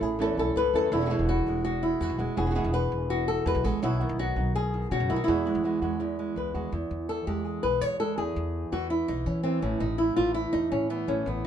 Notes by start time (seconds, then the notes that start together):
Already playing: A2
0.00 A1 A3 C#4 E4 G#4
0.19 E2 E3 A3 C#4 E4 A4
0.37 B1 A3 C#4 E4 A4
0.56 C#2 G#2 B4, muted nylon-string guitar stroke
0.73 D#2 F#2 A3 C#4 E4 A4
0.92 E1 E2 B2 E3 G#3 B3 E4 F#4
0.96 E3 G#3 B3 F#4
1.01 E3 G#3 B3 F#4
1.06 E3 G#3 B3 F#4
1.10 B2 E3 G#3 B3 F#4
1.19 E1
1.28 G#3 B3 F#4
1.46 E1 G#3
1.65 E2 F#4, muted nylon-string guitar stroke
1.83 E4
2.00 E2 E3 G#3 B3 F#4
2.10 B1
2.18 E1 G#3 B3 F#4
2.36 E1 E2 B2 E3 G#3 B3 F#4 G#4
2.46 E3 G#3 B3 F#4
2.50 E3 G#3 B3 F#4
2.55 B2 E3 G#3 B3 F#4
2.64 E1
2.73 G#3 B3 F#4 B4
2.92 E1
3.10 E2 F#4, muted nylon-string guitar stroke
3.28 A4
3.46 E2 E3 G#3 B3 F#4 B4
3.55 B1
3.64 A1 G#3 B3 F#4 A4
3.82 B1 B2 F#3 B3 D#4 E4 F#4
4.00 D#3 B3 D#4 F#4
4.09 B1
4.18 F#3 B3 D#4 F#4
4.36 B1 B3 D#4 F#4
4.55 B2 G#4, muted nylon-string guitar stroke
4.74 D#3
4.91 B2 C#3 F#4
5.00 F#2
5.09 B1 D#3 B3 D#4 E4 F#4
5.16 F#4
5.24 B2 E3 G#3 E4
5.28 E2 B3 F#4
5.45 G#3 B3 F#4
5.55 E2
5.63 E3 G#3 B3 F#4
5.82 E2 G#3 B3 F#4
6.00 E2, muted nylon-string guitar stroke
6.19 G#3
6.36 C#2 B4
6.54 D#2 G#3 B3 F#4
6.72 E2
6.91 E2
7.09 A4
7.27 E2 G#3 G4
7.45 G#4
7.63 B1 B4
7.81 E3 C#5
8.00 G#3 A4
8.18 E2 G#4
8.36 E2
8.72 E2 E3 F#4
8.90 E4
9.08 B1 D#4
9.26 E3 C#4
9.43 E3 C4
9.62 A1 A2 C#4
9.80 A1 D#4
9.98 E4
10.16 A1 E3 F4
10.34 E4
10.53 E2 D#4
10.71 A2 C#4
10.90 E3 B3
11.08 A1 A2 C#4
11.26 A1 B3